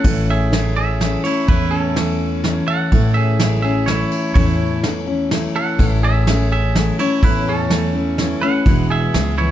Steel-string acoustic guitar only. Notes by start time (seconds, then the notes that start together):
0.05 A2 E3 A3 C#4 E4
0.51 E3 A3 C#4 E4
1.00 E3 A3 C#4 E4
1.24 A3 C#4 E4
1.48 A2 E3 A3 C#4 E4
1.96 E3 A3 C#4 E4
2.44 E3 A3 C#4 E4
2.92 A2 E3 A3 C#4 E4
3.40 E3 A3 C#4 E4
3.63 A3 C#4 E4
3.87 E3 A3 C#4 E4
4.34 A2 E3 A3 C#4 E4
4.82 E3 A3 C#4 E4
5.07 A3 C#4 E4
5.30 E3 A3 C#4 E4
5.78 A2 E3 A3 C#4 E4
6.27 E3 A3 C#4 E4
6.75 E3 A3 C#4 E4
6.99 A3 C#4 E4
7.23 A2 E3 A3 C#4 E4
7.70 E3 A3 C#4 E4
7.93 A3 C#4 E4
8.18 E3 A3 C#4 E4
8.42 A3 C#4 E4
8.66 E2 B2 E3 G#3 B3 E4
9.13 E3 G#3 B3 E4
9.38 E3 G#3 B3 E4